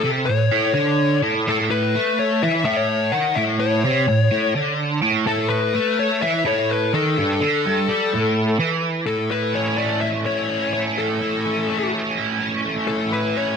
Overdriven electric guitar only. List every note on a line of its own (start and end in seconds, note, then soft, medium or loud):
0.05 0.27 C3 loud
0.30 0.48 A2 medium
0.52 0.74 A2 loud
0.74 1.21 D3 medium
1.23 1.46 A2 loud
1.48 1.94 A2 loud
1.95 2.41 A3 loud
2.43 2.65 E3 loud
2.66 3.12 A2 medium
3.14 3.36 D#3 loud
3.38 3.84 A2 loud
3.85 4.08 C3 loud
4.08 4.27 A2 medium
4.31 4.55 A2 loud
4.56 5.02 D3 medium
5.02 5.26 A2 loud
5.27 5.74 A2 loud
5.75 6.21 A3 loud
6.22 6.45 E3 loud
6.45 6.93 A2 loud
6.95 7.17 D#3 loud
7.18 7.41 G2 loud
7.41 7.64 D3 loud
7.66 7.89 G2 loud
7.88 8.12 G3 loud
8.13 8.59 A2 loud
8.60 9.07 E3 loud
9.07 10.97 A2 medium
9.31 10.25 E4 medium
9.54 10.02 C#4 medium
9.77 10.73 A3 medium
10.02 10.48 C#4 medium
10.25 11.21 E4 medium
10.49 11.45 C#4 medium
10.73 11.69 A3 medium
10.97 12.89 A2 medium
11.22 12.17 E4 medium
11.45 11.93 C#4 medium
11.70 12.63 A3 medium
11.93 12.40 C#4 medium
12.18 13.12 E4 medium
12.40 13.36 C#4 medium
12.64 13.57 A3 medium
12.89 13.57 A2 medium
13.12 13.57 E4 medium
13.36 13.57 C#4 medium